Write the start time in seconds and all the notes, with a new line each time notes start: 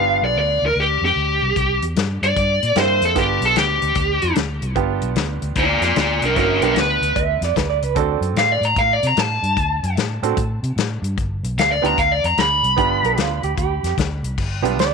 Already playing: G1 B3 D4 F4 G4 F5
0.22 B1 D5
0.36 D2 D5
0.62 D2
0.66 A#4
0.76 D2
0.80 G4
1.01 F2 G4
1.16 D2
1.42 C2
1.56 C2, kick, closed hi-hat
1.82 E2, closed hi-hat
1.96 G2, snare, closed hi-hat
2.22 G2 D5, closed hi-hat
2.36 G2, kick, closed hi-hat
2.62 A#2, closed hi-hat
2.75 G2 A#3 C4 E4 G4 C5, snare, closed hi-hat
3.01 F2 A4, closed hi-hat
3.15 G1 B3 D4 F4 G4, kick, snare, closed hi-hat
3.20 G4
3.41 B1, closed hi-hat
3.45 A4
3.56 D2 G4, snare, closed hi-hat
3.82 D2, closed hi-hat
3.95 D2, kick, closed hi-hat
4.22 F2, closed hi-hat
4.35 D2, snare, closed hi-hat
4.62 C2, closed hi-hat
4.76 G1 B3 D4 F4 G4, kick, closed hi-hat
5.02 B1, closed hi-hat
5.15 D2, snare, closed hi-hat
5.42 D2, closed hi-hat
5.55 D2 F4 D5, kick, closed hi-hat
5.81 F2 F4 D5, snare, closed hi-hat
5.96 D2 F4 D5, snare, closed hi-hat
6.22 C2 D4 A#4, closed hi-hat
6.36 G1 A#3 C#4 D4 E4 F#4 A#4, kick, snare, closed hi-hat
6.62 B1 B3 D4 F4 G4 A#4, closed hi-hat
6.75 D2, snare, closed hi-hat
6.79 B4
7.01 D2, closed hi-hat
7.16 D2 E5, kick, closed hi-hat
7.41 F2 D5, snare, closed hi-hat
7.56 D2 B4, kick, snare, closed hi-hat
7.70 D5
7.82 C#2 B4, closed hi-hat
7.95 D2 C4 D4 F#4 A4 D5, kick, closed hi-hat
8.21 F#2, closed hi-hat
8.34 A2, snare, closed hi-hat
8.38 F5
8.52 D5
8.61 A2, closed hi-hat
8.65 A#5
8.76 A2 F5, kick, closed hi-hat
8.93 D5
9.03 C3, closed hi-hat
9.07 A#5
9.17 A2 A5, snare, closed hi-hat
9.43 G2, closed hi-hat
9.56 D2, kick, closed hi-hat
9.83 F#2, closed hi-hat
9.96 A2, snare, closed hi-hat
10.23 A2 C4 D4 F#4 A4, closed hi-hat
10.37 A2, kick, closed hi-hat
10.63 C3, closed hi-hat
10.76 A2, snare, closed hi-hat
11.02 G2, closed hi-hat
11.17 G1, kick, closed hi-hat
11.43 B1, closed hi-hat
11.57 D2 F5, snare, closed hi-hat
11.72 D5
11.82 D2 B3 D4 F4 G4 A#5, closed hi-hat
11.98 D2 F5, kick, closed hi-hat
12.12 D5
12.24 F2 A#5, closed hi-hat
12.37 D2 B5, snare, closed hi-hat
12.63 C2, closed hi-hat
12.76 G1 B3 D4 F4 G4, kick, closed hi-hat
13.03 B1 A#4, closed hi-hat
13.17 D2 F4, snare, closed hi-hat
13.43 D2 G4, closed hi-hat
13.58 D2 G4, kick, closed hi-hat
13.83 F2, snare, closed hi-hat
13.97 D2, kick, snare, closed hi-hat
14.23 C2, closed hi-hat
14.38 G1, kick, snare, crash
14.62 B1 G3 B3 D4 F4 G4, closed hi-hat
14.77 D2 D5, snare, closed hi-hat